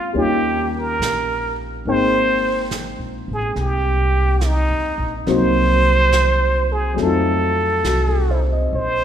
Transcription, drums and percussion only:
0.16 brush sweep
1.02 snare, hi-hat pedal
1.86 brush sweep
2.71 snare, hi-hat pedal
3.56 brush sweep, snare
4.41 snare, hi-hat pedal
5.27 brush sweep, snare
6.12 snare, hi-hat pedal
6.98 brush sweep, snare
7.84 snare, hi-hat pedal
8.72 brush sweep

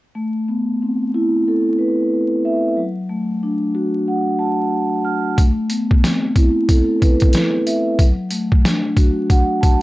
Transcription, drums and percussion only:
5.38 kick, closed hi-hat
5.70 closed hi-hat
5.91 kick
6.04 snare, closed hi-hat
6.36 kick, closed hi-hat
6.69 kick, closed hi-hat
7.02 kick, closed hi-hat
7.20 kick, closed hi-hat
7.33 snare, closed hi-hat
7.67 closed hi-hat
7.99 kick, closed hi-hat
8.31 closed hi-hat
8.52 kick
8.65 snare, closed hi-hat
8.97 kick, closed hi-hat
9.30 kick, closed hi-hat
9.63 kick, closed hi-hat

